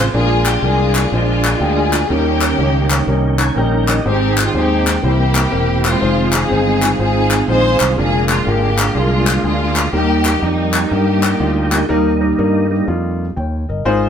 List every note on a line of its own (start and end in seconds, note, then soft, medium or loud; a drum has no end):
0.00 0.10 C4 medium
0.00 0.11 F4 medium
0.00 0.12 G#4 medium
0.13 0.56 A#1 medium
0.13 0.91 A#2 medium
0.13 2.05 F3 medium
0.13 0.50 G#3 medium
0.13 2.05 A#3 medium
0.13 2.06 D4 medium
0.13 0.62 D4 medium
0.13 0.50 D4 medium
0.13 0.50 F4 medium
0.13 0.62 F4 medium
0.13 2.05 G#4 medium
0.13 0.44 G#4 loud
0.13 0.50 A#4 medium
0.46 0.63 G4 medium
0.46 clap loud
0.62 1.04 C2 loud
0.62 1.00 G#3 medium
0.62 0.99 D4 medium
0.62 1.12 D4 medium
0.62 1.13 F4 medium
0.62 1.00 F4 medium
0.62 1.12 G#4 medium
0.62 1.00 A#4 medium
0.95 clap medium
1.12 1.54 A#1 medium
1.12 1.48 G#3 medium
1.12 2.07 G#3 medium
1.12 1.48 D4 medium
1.12 1.60 D4 medium
1.12 1.49 F4 medium
1.12 1.60 F4 medium
1.12 1.49 C5 medium
1.44 clap medium
1.60 2.02 D2 medium
1.60 1.97 G#3 medium
1.60 2.07 D4 medium
1.60 1.97 D4 medium
1.60 2.06 F4 medium
1.60 1.97 F4 medium
1.60 2.10 G#4 medium
1.60 1.97 G5 medium
1.93 clap medium
2.09 2.52 D#2 medium
2.09 4.01 D#3 medium
2.09 2.87 D#3 medium
2.09 2.47 G3 medium
2.09 4.02 A#3 medium
2.09 3.04 A#3 medium
2.09 4.02 C#4 medium
2.09 3.04 C#4 medium
2.09 2.47 C#4 medium
2.09 2.47 D#4 medium
2.09 3.37 G4 medium
2.09 3.08 G4 medium
2.09 2.47 A#4 medium
2.41 clap medium
2.58 3.00 C#2 medium
2.58 2.95 G3 medium
2.58 2.95 C#4 medium
2.58 2.95 D#4 medium
2.58 2.95 G4 medium
2.90 clap medium
3.07 3.49 C2 medium
3.07 3.44 G3 medium
3.07 3.44 C#4 medium
3.07 3.44 D#4 medium
3.07 3.44 A#4 medium
3.39 3.55 C#5 medium
3.39 3.55 G#5 medium
3.39 3.56 A#5 medium
3.39 clap medium
3.56 3.98 A#1 medium
3.56 3.93 G3 medium
3.56 3.93 C#4 medium
3.56 3.93 D#4 medium
3.56 3.86 A#4 medium
3.56 3.93 A#4 medium
3.56 3.86 G5 medium
3.56 3.87 G5 medium
3.87 4.05 G4 medium
3.87 4.03 D#5 medium
3.87 4.04 D#5 medium
3.87 clap medium
4.04 4.47 G#1 medium
4.04 4.83 G#2 medium
4.04 5.01 D#3 medium
4.04 5.01 G#3 medium
4.04 4.42 G#3 medium
4.04 5.01 C4 medium
4.04 4.54 C4 medium
4.04 4.42 D#4 medium
4.04 4.54 D#4 medium
4.04 4.42 G4 medium
4.04 5.02 G4 medium
4.04 4.42 C5 medium
4.09 4.37 G4 medium
4.37 4.55 F4 medium
4.37 clap medium
4.54 4.96 D#2 medium
4.54 4.91 G#3 medium
4.54 5.01 C4 medium
4.54 4.91 D#4 medium
4.54 5.01 D#4 medium
4.54 4.91 G4 medium
4.54 5.05 G4 medium
4.54 4.91 C5 medium
4.87 clap medium
5.02 5.45 C2 medium
5.02 5.81 C3 medium
5.02 5.99 E3 medium
5.02 5.99 A#3 medium
5.02 5.40 A#3 medium
5.02 5.98 A#3 medium
5.02 5.99 C4 medium
5.02 5.40 E4 medium
5.02 5.99 E4 medium
5.02 5.99 G4 medium
5.02 5.40 G4 medium
5.02 5.40 C5 medium
5.07 5.82 G4 medium
5.35 clap medium
5.52 5.94 E1 medium
5.52 5.89 A#3 medium
5.52 5.88 E4 medium
5.52 5.89 G4 medium
5.52 5.88 A#4 medium
5.85 6.79 G#3 medium
5.85 6.33 C4 medium
5.85 6.35 F4 medium
5.85 clap medium
6.01 6.43 F1 medium
6.01 7.93 D#3 medium
6.01 7.93 G#3 medium
6.01 6.38 G#3 medium
6.01 7.93 C4 medium
6.01 6.38 D#4 medium
6.01 7.93 F4 medium
6.01 6.38 F4 medium
6.01 6.38 C5 medium
6.33 6.99 C4 medium
6.33 7.00 D#4 medium
6.33 7.00 G#4 loud
6.33 clap loud
6.50 6.93 G1 loud
6.50 6.86 G#3 medium
6.50 6.86 D#4 medium
6.50 6.86 F4 medium
6.50 6.87 C5 medium
6.82 clap medium
6.99 7.41 G#1 medium
6.99 7.36 G#3 medium
6.99 7.94 C4 medium
6.99 7.36 D#4 medium
6.99 7.48 D#4 medium
6.99 7.36 F4 medium
6.99 7.46 G#4 medium
6.99 7.36 C5 medium
7.31 clap medium
7.48 7.75 A#1 medium
7.48 7.85 G#3 medium
7.48 7.85 D#4 medium
7.48 7.94 D#4 medium
7.48 7.85 F4 medium
7.48 7.94 G#4 medium
7.48 7.85 C5 medium
7.48 7.87 C5 loud
7.80 7.95 C2 medium
7.80 clap medium
7.95 8.39 F1 loud
7.95 9.89 D3 medium
7.95 9.88 G#3 medium
7.95 8.34 G#3 medium
7.95 9.88 A#3 medium
7.95 8.34 D4 medium
7.95 8.46 D4 medium
7.95 9.88 F4 medium
7.95 8.34 F4 medium
7.95 8.27 G#4 loud
7.95 8.34 A#4 medium
8.29 8.45 F4 medium
8.29 clap medium
8.46 8.88 G#1 medium
8.46 8.83 G#3 medium
8.46 9.40 A#3 medium
8.46 8.83 D4 medium
8.46 8.95 D4 medium
8.46 8.83 F4 medium
8.46 8.95 G4 medium
8.46 8.83 A#4 medium
8.78 clap medium
8.95 9.37 C2 medium
8.95 9.31 G#3 medium
8.95 9.44 G#3 medium
8.95 9.31 D4 medium
8.95 9.43 D4 medium
8.95 9.31 F4 medium
8.95 9.43 F4 medium
8.95 9.31 G#4 medium
9.27 clap medium
9.44 9.86 D2 medium
9.44 9.81 G#3 medium
9.44 9.90 G#3 medium
9.44 9.80 D4 medium
9.44 9.90 D4 medium
9.44 9.80 F4 medium
9.44 9.90 F4 medium
9.44 9.81 G#4 medium
9.76 clap medium
9.93 10.35 D#2 medium
9.93 10.70 D#3 medium
9.93 10.30 G3 medium
9.93 11.86 G3 medium
9.93 10.30 A#3 medium
9.93 10.43 A#3 medium
9.93 11.86 A#3 medium
9.93 10.29 D#4 medium
9.93 10.42 D#4 medium
9.93 11.86 D#4 medium
9.93 10.42 G4 loud
9.93 11.86 G4 medium
9.93 10.29 A#4 medium
10.25 clap medium
10.42 10.84 F2 medium
10.42 10.79 G3 medium
10.42 11.37 G3 medium
10.42 10.79 A#3 medium
10.42 10.91 A#3 medium
10.42 10.79 D#4 medium
10.42 10.91 D#4 medium
10.42 10.79 G4 medium
10.74 clap loud
10.91 11.33 G2 loud
10.91 11.28 G3 medium
10.91 11.28 A#3 medium
10.91 11.86 A#3 medium
10.91 11.28 D#4 medium
10.91 11.86 D#4 medium
10.91 11.72 G4 medium
10.91 11.28 A#4 medium
11.23 clap medium
11.40 11.82 D2 medium
11.40 11.76 G3 medium
11.40 11.77 A#3 medium
11.40 11.76 D#4 medium
11.40 11.76 F4 medium
11.72 clap medium
11.89 12.31 D#2 medium
11.89 12.66 D#3 medium
11.89 12.09 G3 loud
11.89 12.67 G3 medium
11.89 12.09 A#3 loud
11.89 12.67 A#3 soft
11.89 12.09 D#4 medium
11.89 12.67 D#4 medium
11.89 12.09 A#4 loud
12.21 12.32 G3 medium
12.21 12.32 A#3 medium
12.21 12.32 D#4 medium
12.21 12.32 A#4 medium
12.38 12.80 G2 medium
12.38 12.75 G3 medium
12.38 12.75 A#3 medium
12.38 12.75 D#4 medium
12.38 12.75 A#4 medium
12.71 12.86 G3 soft
12.71 12.86 A#3 soft
12.71 12.86 D#4 soft
12.87 13.29 F2 medium
12.87 13.24 G3 medium
12.87 13.24 A#3 medium
12.87 13.24 D#4 medium
12.87 13.24 F4 medium
13.37 13.64 D#2 medium
13.37 13.67 C#5 soft
13.37 13.67 G5 medium
13.69 13.84 G1 medium
13.69 14.09 A#4 medium
13.69 14.09 D#5 medium
13.85 14.09 G#1 medium
13.85 14.09 G#2 medium
13.85 14.09 G#3 loud
13.85 14.09 D#4 medium
13.85 14.09 F4 medium
13.85 14.09 C5 loud